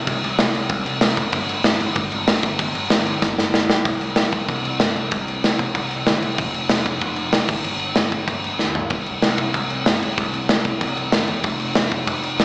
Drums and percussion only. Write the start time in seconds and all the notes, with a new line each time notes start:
0.07 kick, crash
0.24 crash
0.38 snare, crash
0.55 crash
0.69 kick, crash
0.86 crash
1.01 snare, crash
1.17 kick, crash
1.32 kick, crash
1.49 crash
1.64 snare, crash
1.80 crash
1.95 kick, crash
2.12 crash
2.27 snare, crash
2.43 kick, crash
2.59 kick, crash
2.75 crash
2.90 snare, crash
3.06 crash
3.22 kick, snare
3.38 snare
3.54 snare
3.70 snare
3.85 kick, crash
4.01 crash
4.16 snare, crash
4.32 kick, crash
4.48 kick, crash
4.65 crash
4.80 snare, crash
4.96 crash
5.11 kick, crash
5.28 crash
5.44 snare, crash
5.59 kick, crash
5.75 kick, crash
5.91 crash
6.06 snare, crash
6.22 crash
6.38 kick, crash
6.54 crash
6.69 snare, crash
6.86 kick, crash
7.01 kick, crash
7.16 crash
7.32 snare, crash
7.49 kick, crash
7.64 crash
7.79 crash
7.95 snare, crash
8.12 kick, crash
8.28 kick, crash
8.44 crash
8.59 snare
8.75 floor tom
8.90 kick, crash
9.06 crash
9.22 snare, crash
9.38 kick, crash
9.54 kick, crash
9.70 crash
9.86 snare, crash
10.02 crash
10.18 kick, crash
10.33 crash
10.49 snare, crash
10.64 kick, crash
10.81 kick, crash
10.97 crash
11.12 snare, crash
11.28 crash
11.43 kick, crash
11.59 crash
11.75 snare, crash
11.91 kick, crash
12.07 kick, crash
12.23 crash
12.39 snare, crash